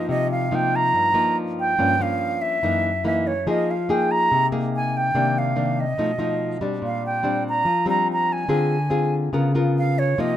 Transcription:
Already playing: nylon-string guitar F3 A#3 D#4
0.09 nylon-string guitar C3, flute D#5
0.32 flute F5
0.51 nylon-string guitar F3 A#3 D#4, flute G5
0.76 flute A#5
0.94 nylon-string guitar G2
1.14 nylon-string guitar F3 A#3 D#4
1.60 flute G5
1.79 nylon-string guitar G2 F3 A#3 C#4
2.00 nylon-string guitar F3 A#3 C#4, flute F5
2.42 flute E5
2.63 nylon-string guitar F#2 E3 A#3 D#4
3.04 nylon-string guitar E3 A#3 D#4, flute E5
3.27 flute C#5
3.47 nylon-string guitar F3 A#3 D#4 G#4, flute D#5
3.71 flute F5
3.89 nylon-string guitar A#3 D#4 G#4, flute G5
4.11 flute A#5
4.32 nylon-string guitar C3
4.52 nylon-string guitar A#3 D#4 G#4
4.76 flute G#5
4.97 flute G5
5.15 nylon-string guitar C3 D#3 A#3 D4
5.38 flute F5
5.56 nylon-string guitar D#3 A#3 D4
5.80 flute D#5
5.98 nylon-string guitar B2 F3 A3 D#4
6.18 nylon-string guitar F3 A3 D#4
6.61 nylon-string guitar G3 C4 D4
6.82 nylon-string guitar A#2
6.86 flute F5
7.06 flute G5
7.23 nylon-string guitar G3 C4 D4
7.49 flute A#5
7.65 nylon-string guitar F3
7.86 nylon-string guitar G3 C4 D4, flute A#5
8.13 flute A#5
8.32 flute G#5
8.49 nylon-string guitar D3 C4 F4 G#4
8.90 nylon-string guitar C4 F4 G#4
9.33 nylon-string guitar C#3 B3 F4 A#4
9.55 nylon-string guitar B3 F4 A#4
9.78 flute F5
9.99 flute C#5
10.18 nylon-string guitar C3 F3 A#3 D#4, flute D#5

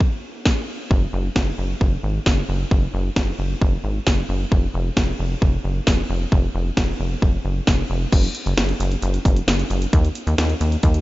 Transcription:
0.00 kick
0.45 kick, snare
0.91 analog synth bass F#1, kick
1.13 analog synth bass F#1
1.36 analog synth bass F#1, kick, snare
1.58 analog synth bass F#1
1.81 analog synth bass F#1, kick
2.03 analog synth bass G#1
2.26 analog synth bass F#1, kick, snare
2.49 analog synth bass F#1
2.71 analog synth bass F#1, kick
2.94 analog synth bass F#1
3.16 analog synth bass F#1, kick, snare
3.39 analog synth bass F#1
3.61 analog synth bass F#1, kick
3.84 analog synth bass G#1
4.07 analog synth bass F#1, kick, snare
4.29 analog synth bass F#1
4.52 analog synth bass F1, kick
4.74 analog synth bass F1
4.97 analog synth bass F1, kick, snare
5.19 analog synth bass F1
5.42 analog synth bass F1, kick
5.64 analog synth bass F#1
5.87 analog synth bass F1, kick, snare
6.10 analog synth bass F1
6.32 analog synth bass F1, kick
6.55 analog synth bass F1
6.77 analog synth bass F1, kick, snare
7.00 analog synth bass F1
7.22 analog synth bass F1, kick
7.45 analog synth bass F#1
7.67 analog synth bass F1, kick, snare
7.90 analog synth bass F1
8.12 analog synth bass F#1, kick, closed hi-hat, crash
8.24 closed hi-hat
8.35 closed hi-hat
8.46 analog synth bass F#1, closed hi-hat
8.57 analog synth bass F#1, snare, closed hi-hat
8.69 closed hi-hat
8.80 analog synth bass F#1, closed hi-hat
8.91 closed hi-hat
9.02 analog synth bass F#1, closed hi-hat
9.14 closed hi-hat
9.25 analog synth bass F#1, kick, closed hi-hat
9.36 closed hi-hat
9.48 analog synth bass F#1, snare, closed hi-hat
9.59 closed hi-hat
9.70 analog synth bass F#1, closed hi-hat
9.82 closed hi-hat
9.93 analog synth bass D#2, kick, closed hi-hat
10.05 closed hi-hat
10.15 closed hi-hat
10.27 analog synth bass D#2, closed hi-hat
10.38 analog synth bass D#2, snare, closed hi-hat
10.50 closed hi-hat
10.61 analog synth bass D#2, closed hi-hat
10.72 closed hi-hat
10.83 analog synth bass D#2, kick, closed hi-hat
10.94 closed hi-hat

